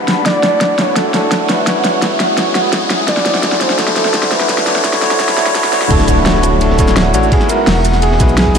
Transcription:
Already playing: tine electric piano A3 D4 F#4 G4 B4, ambient pad F#5 A5 B5, riser
0.08 detuned saw bass B1, snare, closed hi-hat
0.23 detuned saw bass D1, tine electric piano A3 D4 E4 F#4, flugelhorn D5, ambient pad E5 C#6, kick, snare, closed hi-hat
0.28 tine electric piano D5
0.43 snare, closed hi-hat
0.61 kick, snare, closed hi-hat
0.79 flugelhorn C#5, snare, closed hi-hat
0.94 tine electric piano A3 D4 E4 F#4, flugelhorn A4, kick, snare, closed hi-hat
0.99 tine electric piano C#5
1.14 flugelhorn A4, snare, closed hi-hat
1.31 kick, snare, closed hi-hat
1.49 detuned saw bass A1, flugelhorn B4, snare, closed hi-hat
1.64 tine electric piano G#3 C#4 E4 F#4, ambient pad G#5 D#6, kick, snare, closed hi-hat
1.69 tine electric piano C#5
1.84 snare, closed hi-hat
2.02 detuned saw bass E1, kick, snare, closed hi-hat
2.20 snare, closed hi-hat
2.35 tine electric piano G#3 C#4 E4 F#4, kick, snare, closed hi-hat
2.40 tine electric piano C#5
2.55 detuned saw bass B1, snare, closed hi-hat
2.73 kick, snare, closed hi-hat
2.90 snare, closed hi-hat
3.06 detuned saw bass C2, tine electric piano A3 D4 E4 F#4, flugelhorn D5, ambient pad E5 B5 D6, kick, snare, closed hi-hat
3.11 tine electric piano C5
3.17 snare
3.26 snare, closed hi-hat
3.34 snare
3.41 tine electric piano A3 D4 E4 F#4, kick, snare, closed hi-hat
3.46 tine electric piano C5
3.52 snare
3.61 flugelhorn C5, snare, closed hi-hat
3.70 snare
3.76 tine electric piano A3 D4 E4 F#4, flugelhorn A4, kick, snare, closed hi-hat
3.81 tine electric piano C5
3.87 snare
3.96 flugelhorn A4, snare, closed hi-hat
4.05 snare
4.11 tine electric piano A3 D4 E4 F#4, kick, snare, closed hi-hat
4.17 tine electric piano C5
4.23 snare
4.31 detuned saw bass G1, flugelhorn B4, snare, closed hi-hat
4.40 snare
4.47 tine electric piano A3 D4 E4 F#4, ambient pad F#5 A5 B5, kick, snare, closed hi-hat
4.52 tine electric piano C#5
4.58 snare
4.64 tine electric piano A3 D4 E4, snare, closed hi-hat
4.68 tine electric piano F#4 C#5
4.76 snare
4.82 detuned saw bass G1, tine electric piano A3 D4 E4 F#4, kick, snare, closed hi-hat
4.87 tine electric piano C#5
4.93 snare
4.99 tine electric piano A3 D4 E4 F#4, snare, closed hi-hat
5.05 tine electric piano C#5
5.11 snare
5.17 tine electric piano A3 D4 E4 F#4, kick, snare, closed hi-hat
5.23 tine electric piano C#5
5.29 snare
5.35 detuned saw bass D1, tine electric piano A3 D4 E4 F#4, snare, closed hi-hat
5.40 tine electric piano C#5
5.46 snare
5.53 tine electric piano A3 D4 E4 F#4, kick, snare, closed hi-hat
5.58 tine electric piano C#5
5.64 snare
5.71 detuned saw bass B1, tine electric piano A3 D4 E4 F#4, snare, closed hi-hat
5.76 tine electric piano C#5
5.81 detuned saw bass B1, snare
5.88 detuned saw bass D1, tine electric piano A3 D4 E4 F#4, flugelhorn A4, ambient pad E5 F#5 C#6, kick, closed hi-hat, crash, ride, impact
5.93 tine electric piano C#5
5.99 snare
6.07 flugelhorn F#4, kick, closed hi-hat, ride, shaker
6.26 snare, closed hi-hat, ride
6.35 snare
6.43 closed hi-hat, ride, shaker
6.61 flugelhorn A4, closed hi-hat, ride
6.70 snare
6.77 tine electric piano A3 D4 E4 F#4 C#5, kick, snare, closed hi-hat, ride, shaker
6.88 snare, shaker
6.96 flugelhorn F#4, snare, closed hi-hat, ride
7.13 detuned saw bass A1, tine electric piano A3 D4 E4 F#4 C#5, flugelhorn F#4, closed hi-hat, ride, shaker
7.23 shaker
7.29 tine electric piano G#3 D#4 E4 F#4, flugelhorn G#4, ambient pad G#5 D#6, kick, closed hi-hat, ride
7.34 tine electric piano B3
7.41 snare
7.49 flugelhorn A#4, closed hi-hat, ride, shaker
7.67 detuned saw bass E1, snare, closed hi-hat, open hi-hat
7.75 ride
7.85 closed hi-hat, ride, shaker
7.93 snare
8.02 flugelhorn G#4, closed hi-hat, ride
8.11 snare
8.19 detuned saw bass B1, tine electric piano G#3 D#4 E4 F#4 B4, kick, snare, closed hi-hat, ride, shaker
8.29 shaker
8.38 flugelhorn G#4, snare, closed hi-hat, ride
8.46 kick
8.54 tine electric piano G#3 D#4 E4, snare, closed hi-hat, shaker

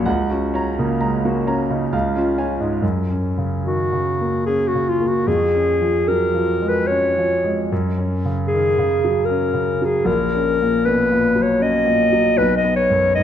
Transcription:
0.05 grand piano C#2 F#5
0.31 grand piano C#4 F#4
0.54 grand piano C#5 A#5
0.78 grand piano C#3 A#3
1.01 grand piano G#3 A#5
1.25 grand piano A#3 F#4
1.47 grand piano C#4 C#5 A#5
1.70 grand piano C#3 D#4
1.93 grand piano C#2 F5
2.15 grand piano C#4 F4
2.38 grand piano C#5 G#5
2.60 grand piano G#2 G#3
2.82 grand piano F#2
3.10 grand piano C#4
3.38 grand piano C#3
3.65 grand piano D#3, clarinet F#4
3.93 grand piano C#3
4.21 grand piano A#3
4.46 grand piano C#4, clarinet G#4
4.68 clarinet F#4
4.75 grand piano C#3
4.89 clarinet F4
5.01 grand piano A#3
5.08 clarinet F#4
5.27 grand piano F2, clarinet G#4
5.55 grand piano C#4
5.81 grand piano F3
6.08 grand piano F#3, clarinet A#4
6.34 grand piano F3
6.62 grand piano G#3
6.69 clarinet B4
6.87 grand piano C#4, clarinet C#5
7.18 grand piano F3
7.44 grand piano G#3
7.72 grand piano F#2
7.98 grand piano C#4
8.25 grand piano C#3
8.48 clarinet G#4
8.53 grand piano D#3
8.79 grand piano C#3
9.04 grand piano F#3
9.25 clarinet A#4
9.30 grand piano C#4
9.54 grand piano C#3
9.82 grand piano F#3, clarinet G#4
10.05 grand piano A#1, clarinet A#4
10.35 grand piano C#4
10.62 grand piano A#2
10.86 grand piano B2, clarinet B4
11.11 grand piano A#2
11.36 grand piano F#3
11.43 clarinet C#5
11.60 grand piano C#4, clarinet D#5
11.86 grand piano A#2
12.13 grand piano F#3
12.37 grand piano B1, clarinet B4
12.57 clarinet D#5
12.64 grand piano B3
12.76 clarinet C#5
12.90 grand piano F#2
13.15 grand piano G#2, clarinet D#5

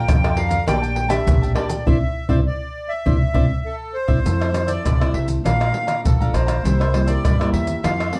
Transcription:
Already playing: cavaquinho D5 F5 A#5, accordion G5
0.08 upright bass F2, nylon-string guitar F3, pandeiro, tamborim, maracas, surdo
0.23 nylon-string guitar D4 F4 A4, cavaquinho D5 F5 A#5, pandeiro, tamborim, maracas
0.36 cavaquinho A4 D5 F5 A#5, accordion F5, pandeiro
0.49 cavaquinho D5 F5 A#5, pandeiro, maracas, surdo
0.66 upright bass A#1, nylon-string guitar A#2 A3 D4 G4, cavaquinho A#4 D5 G5 A5, accordion G5, pandeiro, tamborim, maracas, surdo
0.82 cavaquinho D5 G5 A5, pandeiro, maracas
0.95 muted cavaquinho stroke, pandeiro
1.09 nylon-string guitar A3 D4 G4, cavaquinho D5 G5 A5, accordion E5, pandeiro, tamborim, maracas
1.27 upright bass A#1, nylon-string guitar A#2, pandeiro, maracas, surdo
1.42 cavaquinho D5 G5 A5, pandeiro, maracas, surdo
1.55 nylon-string guitar A3 D4 G4, cavaquinho A#4 D5 G5 A5, accordion D5, pandeiro, tamborim
1.69 cavaquinho D5 G5 A5, pandeiro, maracas, surdo
1.86 upright bass C2, nylon-string guitar C4 D4 E4, cavaquinho C5 D5 E5, accordion E5, surdo
2.29 upright bass C2, nylon-string guitar C4 D4 E4, accordion C5, cavaquinho C5 D5 E5, surdo
2.47 accordion D5
2.89 accordion E5
3.06 upright bass C2, nylon-string guitar C4 D4 E4, cavaquinho C5 D5 E5, surdo
3.34 upright bass C2, nylon-string guitar C4 D4 E4, cavaquinho C5 D5 E5, surdo
3.66 accordion A4
3.94 accordion C5
4.08 upright bass C2, nylon-string guitar C4 D4 E4, cavaquinho C5 D5 E5, surdo
4.25 upright bass F2, nylon-string guitar F3 A3 C4 E4, cavaquinho F4 A4 C5 E5, pandeiro, maracas, surdo
4.40 cavaquinho A4 C5 E5, pandeiro, tamborim, maracas
4.54 nylon-string guitar A3 C4 E4, muted cavaquinho stroke, pandeiro, tamborim, maracas
4.67 cavaquinho A4 C5 E5, accordion D5, pandeiro, maracas
4.84 upright bass C2, nylon-string guitar C3, cavaquinho F4 A4 C5 E5, pandeiro, tamborim, maracas, surdo
5.00 nylon-string guitar A3 C4 E4, cavaquinho A4 C5 E5, pandeiro, tamborim, maracas
5.14 upright bass C2, accordion E5, pandeiro
5.28 pandeiro, maracas
5.44 upright bass A#1, nylon-string guitar A#2 A3 D4 F4, cavaquinho A4 D5 F5 A#5, accordion F5, pandeiro, tamborim, maracas, surdo
5.60 cavaquinho D5 F5 A#5, pandeiro, tamborim, maracas
5.73 nylon-string guitar A3 D4 F4, muted cavaquinho stroke, pandeiro
5.87 cavaquinho D5 F5 A#5, pandeiro, tamborim, maracas
6.05 upright bass A#1, nylon-string guitar F3, accordion A4, pandeiro, maracas, surdo
6.20 nylon-string guitar A3 D4 F4, cavaquinho D5 F5 A#5, pandeiro, maracas
6.33 upright bass A#1, cavaquinho A4 D5 F5 A#5, accordion C5, pandeiro, tamborim, maracas
6.47 cavaquinho D5 F5 A#5, pandeiro, tamborim, maracas
6.64 upright bass C2, nylon-string guitar C3 G3 A#3 E4, cavaquinho E4 A#4 C5 E5, pandeiro, maracas, surdo
6.80 cavaquinho A#4 C5 E5, pandeiro, tamborim, maracas
6.93 nylon-string guitar G3 A#3 E4, muted cavaquinho stroke, pandeiro, tamborim
7.06 cavaquinho A#4 C5 E5, accordion D5, pandeiro, maracas
7.23 upright bass G2, nylon-string guitar G2, cavaquinho E4 A#4 C5 E5, pandeiro, tamborim, maracas, surdo
7.40 nylon-string guitar G3 A#3 E4, cavaquinho A#4 C5 E5, pandeiro, tamborim, maracas
7.53 upright bass E2, accordion E5, pandeiro
7.67 pandeiro, maracas
7.83 upright bass F2, nylon-string guitar F3 A3 C4 E4, cavaquinho F4 A4 C5 E5, accordion F5, pandeiro, tamborim, maracas, surdo
7.99 cavaquinho A4 C5 E5, pandeiro, tamborim, maracas
8.13 nylon-string guitar A3 C4 E4, accordion D5, muted cavaquinho stroke, pandeiro

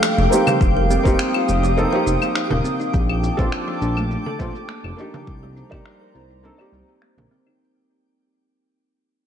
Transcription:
Already playing: synth texture G4 G5, ambient pad A4 F5
0.03 kalimba F3, finger snap, shaker
0.18 analog synth bass F1, kalimba F3
0.29 felt piano A#3 C4 D#4, kalimba A#3, shaker
0.33 felt piano G4
0.47 kalimba G3, frame drum, claves, shaker
0.61 analog synth bass F1, kalimba D#4, ambient pad D#6, kick, shaker
0.77 kalimba A#4
0.91 kalimba C4, shaker
1.03 analog synth bass F1, felt piano A#3 C4 D#4, kalimba D#4, kick, shaker
1.07 felt piano G4
1.19 kalimba C4, finger snap, shaker
1.34 kalimba F4, claves
1.49 analog synth bass F1, kalimba F3, shaker
1.63 kalimba F3, shaker
1.76 kalimba F3, felt piano A#3 C4 D#4 A4, shaker
1.91 kalimba F3, felt piano A#3 C4 D#4 G4
2.06 analog synth bass F1, kalimba D#4, shaker
2.22 kalimba A#3, claves, shaker
2.35 kalimba D#4, finger snap, shaker
2.50 analog synth bass D#1, kalimba A#4, frame drum
2.64 kalimba C4, shaker
2.80 kalimba D#4, shaker
2.94 analog synth bass A#1, kalimba A#3, ambient pad A5 D6, kick, shaker
3.09 kalimba F4, claves
3.24 kalimba F3, shaker
3.37 analog synth bass A#1, kalimba F3, felt piano C4 D4 A4, kick, shaker
3.41 felt piano F4
3.52 kalimba F3, finger snap, shaker
3.68 kalimba F3
3.81 analog synth bass A#1, kalimba D4, shaker
3.97 kalimba A3, claves, shaker
4.11 kalimba D4, shaker
4.26 kalimba A4, frame drum
4.39 analog synth bass A#1, felt piano A3 C4 D4 F4, kalimba A#3, kick, shaker
4.55 kalimba D4, shaker
4.69 kalimba A#3, finger snap, shaker
4.84 analog synth bass F1, kalimba F4, claves
4.96 kalimba F3, felt piano A#3 D4 D#4 G4, shaker
5.14 kalimba F3, frame drum, shaker
5.26 analog synth bass C2, kalimba G3, ambient pad C5 A#5, kick, shaker
5.43 kalimba G3
5.56 kalimba D#4, shaker
5.70 analog synth bass C2, felt piano A#3 D#4 D5, kalimba A#3, kick, claves, shaker
5.74 felt piano G4
5.86 kalimba D#4, finger snap, shaker
6.01 kalimba A#4
6.15 analog synth bass C2, kalimba C4, shaker
6.30 kalimba D#4, shaker
6.43 felt piano A#3 D4 D#4 A4, kalimba C4, shaker
6.57 felt piano A#3 D#4 G4 D5, kalimba G4, claves
6.72 analog synth bass C2, kalimba C4, shaker
6.88 kalimba G4, shaker
7.02 kalimba A#3, finger snap
7.17 analog synth bass A#1, kalimba A#4, frame drum
7.31 kalimba C4, shaker
7.47 kalimba D#4, claves, shaker

